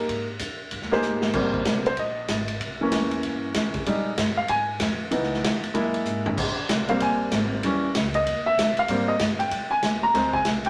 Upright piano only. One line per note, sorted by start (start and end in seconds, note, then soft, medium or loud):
0.00 0.25 A#3 soft
0.00 0.25 D#4 soft
0.00 0.25 G4 soft
0.00 0.25 G#4 soft
0.00 0.25 A#4 soft
0.91 1.32 A#3 medium
0.91 1.32 D#4 medium
0.91 1.33 G4 medium
0.91 1.33 G#4 medium
0.91 1.33 C5 medium
1.34 1.83 G3 soft
1.34 1.83 A#3 soft
1.34 1.83 C4 medium
1.87 1.98 C5 medium
1.99 2.46 D#5 medium
2.81 3.83 E3 medium
2.81 3.83 A#3 soft
2.81 3.83 C#4 medium
3.87 4.10 G3 medium
3.87 4.10 G#3 soft
3.87 4.11 D#4 medium
4.37 4.49 F5 medium
4.49 4.97 G#5 medium
5.11 5.60 E3 medium
5.11 5.61 B3 soft
5.11 5.60 D#4 medium
5.74 6.34 G#3 soft
5.74 6.34 A#3 soft
5.74 6.34 E4 medium
6.88 7.59 G3 medium
6.88 7.59 A#3 soft
6.88 7.60 C4 medium
6.88 7.00 F5 medium
7.02 7.49 G#5 medium
7.64 7.87 E3 soft
7.64 7.87 G3 soft
7.64 7.87 C#4 medium
8.15 8.44 D#5 medium
8.46 8.75 E5 medium
8.79 9.07 F5 medium
8.89 9.11 G3 medium
8.89 9.12 A#3 soft
8.89 9.12 C4 medium
9.08 9.19 D#5 medium
9.39 9.68 G5 medium
9.71 10.00 G#5 medium
10.03 10.32 A#5 medium
10.14 10.37 F3 medium
10.14 10.37 G#3 soft
10.14 10.37 C4 medium
10.33 10.45 G#5 medium
10.66 10.70 G5 loud